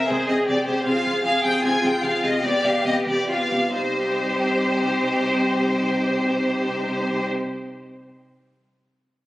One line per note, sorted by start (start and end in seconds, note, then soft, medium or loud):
0.08 0.17 C3 soft
0.08 0.27 C4 soft
0.08 0.47 G#4 soft
0.08 0.27 G#4 soft
0.08 0.28 C5 medium
0.28 0.36 C3 soft
0.28 0.45 C4 soft
0.28 0.46 G#4 soft
0.28 0.36 D#5 soft
0.46 0.56 C3 soft
0.46 0.64 C4 soft
0.46 0.85 G4 soft
0.46 0.64 G#4 soft
0.46 0.66 D5 medium
0.65 0.75 C3 soft
0.65 0.84 C4 soft
0.65 0.84 G#4 soft
0.65 0.85 C5 soft
0.85 0.93 C3 soft
0.85 1.02 C4 soft
0.85 1.24 F4 soft
0.85 1.02 G#4 soft
0.85 1.23 F5 medium
1.03 1.12 C3 soft
1.03 1.22 C4 soft
1.03 1.22 G#4 soft
1.24 1.31 C3 medium
1.24 1.41 C4 soft
1.24 1.41 G#4 soft
1.24 1.63 G#4 soft
1.24 1.43 F5 medium
1.42 1.52 C3 soft
1.42 1.61 C4 soft
1.42 1.60 G#4 soft
1.42 1.63 G5 medium
1.62 1.71 C3 soft
1.62 1.81 C4 soft
1.62 2.43 F4 soft
1.62 1.81 G#4 soft
1.62 1.83 G#5 medium
1.82 1.91 C3 soft
1.82 2.01 C4 soft
1.82 2.01 G#4 soft
1.82 2.03 G5 medium
2.02 2.11 C3 soft
2.02 2.20 C4 soft
2.02 2.21 G#4 soft
2.02 2.23 F5 medium
2.21 2.31 C3 soft
2.21 2.42 C4 soft
2.21 2.42 G#4 soft
2.21 2.44 D#5 medium
2.41 2.51 C3 medium
2.41 2.61 B3 soft
2.41 2.61 G4 soft
2.41 3.26 G4 soft
2.41 2.64 D5 medium
2.62 2.71 C3 soft
2.62 2.83 B3 soft
2.62 2.83 G4 soft
2.62 2.85 F5 medium
2.84 2.92 C3 soft
2.84 3.04 B3 soft
2.84 3.05 G4 soft
2.84 2.93 D#5 medium
3.05 3.14 C3 soft
3.05 3.26 B3 soft
3.05 3.27 G4 soft
3.05 3.29 D5 medium
3.27 3.36 C3 soft
3.27 3.49 B3 soft
3.27 3.51 F4 soft
3.27 3.49 G4 soft
3.27 3.74 F5 soft
3.50 3.59 C3 soft
3.50 3.73 B3 soft
3.50 3.73 G4 soft
3.73 7.26 C3 soft
3.73 7.25 G3 soft
3.73 7.25 D#4 soft
3.73 7.26 G4 soft
3.73 7.26 C5 soft